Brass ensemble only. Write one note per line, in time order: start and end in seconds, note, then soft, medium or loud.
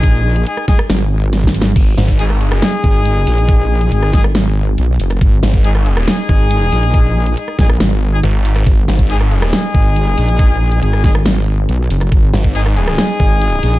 0.00 0.44 G#3 medium
0.00 0.44 D#4 medium
0.00 0.44 G#4 loud
0.46 0.65 G#3 medium
0.46 0.66 D#4 medium
0.46 0.66 G#4 medium
0.68 0.77 G#3 medium
0.68 0.77 D#4 medium
0.68 0.77 G#4 loud
2.19 2.25 G#3 loud
2.19 2.25 D#4 medium
2.19 2.25 G#4 loud
2.41 3.89 G#3 medium
2.41 3.89 D#4 medium
2.41 3.89 G#4 loud
3.92 4.11 G#3 medium
3.92 4.11 D#4 medium
3.92 4.11 G#4 medium
4.13 4.23 G#3 medium
4.13 4.23 D#4 medium
4.13 4.23 G#4 loud
5.64 5.70 G#3 loud
5.64 5.70 D#4 medium
5.64 5.70 G#4 loud
5.86 7.35 G#3 medium
5.86 7.34 D#4 medium
5.86 7.34 G#4 loud
7.37 7.56 G#3 medium
7.37 7.56 D#4 medium
7.37 7.56 G#4 medium
7.59 7.68 G#3 medium
7.59 7.68 D#4 medium
7.59 7.68 G#4 loud
8.13 8.18 G#3 loud
8.13 8.18 D#4 medium
8.13 8.18 G#4 loud
9.10 9.16 G#3 loud
9.10 9.16 D#4 medium
9.10 9.16 G#4 loud
9.31 10.80 G#3 medium
9.31 10.80 D#4 medium
9.31 10.80 G#4 loud
10.82 11.01 G#3 medium
10.82 11.01 D#4 medium
10.82 11.01 G#4 medium
11.04 11.13 G#3 medium
11.04 11.13 D#4 medium
11.04 11.13 G#4 loud
12.55 12.61 G#3 loud
12.55 12.61 D#4 medium
12.55 12.61 G#4 loud
12.77 13.79 G#3 medium
12.77 13.79 D#4 medium
12.77 13.79 G#4 loud